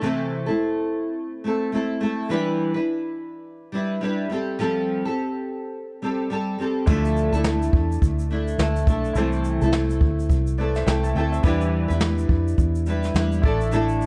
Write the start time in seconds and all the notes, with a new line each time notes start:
0.01 C3 E3 A3 C4 E4 A4
0.46 A3 C4 E4 A4
1.44 A3 C4 E4 A4
1.72 A3 C4 E4 A4
2.01 A3 C4 E4 A4
2.29 E3 G3 D4 E4 B4
2.74 D4 E4 B4
3.72 G3 D4 E4 B4
4.01 G3 D4 E4 B4
4.30 G3 C4 G4 A4
4.59 F3 G3 C4 G4 A4
5.05 C4 G4 A4
6.02 G3 C4 G4 A4
6.30 G3 C4 G4 A4
6.59 G3 C4 G4 A4
6.86 D2 D3 F3 A3 D4 E4 F4 A4 E5, kick, shaker
7.05 shaker
7.17 shaker
7.32 D2 A3 D4 E4 A4, shaker
7.44 snare, shaker
7.62 shaker
7.73 E2, kick
7.92 shaker
8.02 D2, kick, shaker
8.19 shaker
8.30 A3 D4 E4 A4
8.48 shaker
8.58 D2 A3 D4 E4 A4, snare, shaker
8.76 shaker
8.87 B1 A3 D4 E4 A4, kick, shaker
9.05 shaker
9.13 C2 C3 E3 A3 E4 A4, shaker
9.17 C4 E4 A4 C5
9.32 shaker
9.44 shaker
9.62 C2 A3 C4 E4 A4, shaker
9.73 snare, shaker
9.90 shaker
10.01 D2, kick
10.20 shaker
10.29 C2, kick, shaker
10.47 shaker
10.58 A3 C4 E4 A4 B4 D5
10.75 C5 E5, snare, shaker
10.86 C2 A3 C4 E4 A4 E5 G5, snare, shaker
11.04 A5, shaker
11.15 D2 A3 C4 E4 A4 E5 G5
11.32 C5 E5, shaker
11.43 E2 E3 G3 B3 D4 E4 G4 B4, kick, shaker
11.47 D5
11.61 shaker
11.88 E2 D4 E4 B4, shaker
12.01 snare, shaker
12.18 shaker
12.29 F2, kick
12.48 shaker
12.58 E2, kick, shaker
12.75 shaker
12.86 G3 D4 E4 B4, shaker
13.03 snare, shaker
13.14 E2 G3 D4 E4 B4, snare, shaker
13.32 shaker
13.42 A1 A3 D4 E4 A4 D5, kick
13.61 shaker
13.71 A2 D3 A3 D4 E4 A4, shaker
13.89 shaker
14.01 shaker